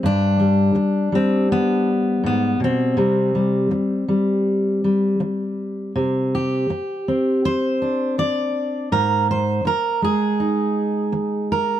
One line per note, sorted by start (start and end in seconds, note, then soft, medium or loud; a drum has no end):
0.00 0.74 G2 medium
0.00 0.39 G3 medium
0.06 1.88 D4 loud
0.40 1.12 G3 soft
0.75 muted steel-string acoustic guitar stroke medium
1.12 2.97 G3 medium
1.12 1.51 C4 medium
1.52 2.25 B3 medium
2.24 2.59 G#2 medium
2.24 2.62 B3 medium
2.60 2.97 B2 medium
2.64 5.98 C4 medium
2.97 3.70 C3 medium
2.97 3.34 G3 soft
3.35 4.07 G3 soft
3.71 muted steel-string acoustic guitar stroke medium
4.08 4.83 G3 medium
4.84 5.92 G3 soft
5.20 muted steel-string acoustic guitar stroke medium
5.96 6.69 C3 medium
6.35 7.45 G4 medium
6.70 muted steel-string acoustic guitar stroke medium
7.08 8.88 C4 medium
7.45 8.18 C5 loud
7.82 8.92 D4 soft
8.18 8.92 D5 loud
8.18 muted steel-string acoustic guitar stroke medium
8.92 9.64 G#2 medium
8.92 9.29 A#4 loud
9.31 9.67 C5 medium
9.65 10.03 A#4 loud
9.65 muted steel-string acoustic guitar stroke medium
10.02 11.80 G#3 medium
10.02 11.51 G#4 loud
10.40 11.80 D#4 soft
11.12 muted steel-string acoustic guitar stroke medium
11.52 11.80 A#4 loud